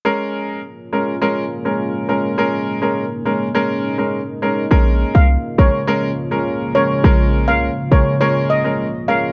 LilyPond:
<<
  \new Staff \with { instrumentName = "Steel pan" } { \time 4/4 \key bes \minor \tempo 4 = 103 r1 | r1 | r8. f''16 r8 des''16 r4. r16 des''16 r16 | r8. f''16 r8 des''16 r16 des''16 r16 ees''16 r8. f''16 r16 | }
  \new Staff \with { instrumentName = "Grand piano" } { \time 4/4 \key bes \minor <aes des' bes'>4 r8 <aes des' bes'>16 r16 <aes des' bes'>16 r8 <aes des' bes'>8. <aes des' bes'>8 | <aes des' bes'>8. <aes des' bes'>16 r8 <aes des' bes'>16 r16 <aes des' bes'>8. <aes des' bes'>16 r8 <aes des' bes'>16 r16 | <aes des' bes'>4 r8 <aes des' bes'>16 r16 <aes des' bes'>16 r8 <aes des' bes'>8. <aes des' bes'>8 | <aes des' bes'>8. <aes des' bes'>16 r8 <aes des' bes'>16 r16 <aes des' bes'>8. <aes des' bes'>16 r8 <aes des' bes'>16 r16 | }
  \new Staff \with { instrumentName = "Ambient pad" } { \time 4/4 \key bes \minor << { <aes bes des' bes'>1~ | <aes bes des' bes'>1 | <des f aes f'>1~ | <des f aes f'>1 | } \\ { f'1 | ees'1 | bes1~ | bes1 | } >> }
  \new Staff \with { instrumentName = "808-style bass" } { \clef bass \time 4/4 \key bes \minor r1 | r1 | bes,,8. c,8 r16 bes,,16 r2 r16 | bes,,8. c,8 r16 bes,,16 r2 r16 | }
>>